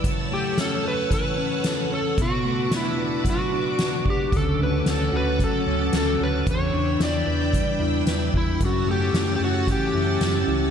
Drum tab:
HH |x-x-x-x-|x-x-x-x-|x-x-x-x-|x-x-x-x-|
SD |--o---o-|--o---o-|--o---o-|--o---o-|
BD |o---o---|o---o--o|o---o---|o---o--o|

HH |x-x-x-x-|
SD |--o---o-|
BD |o---o---|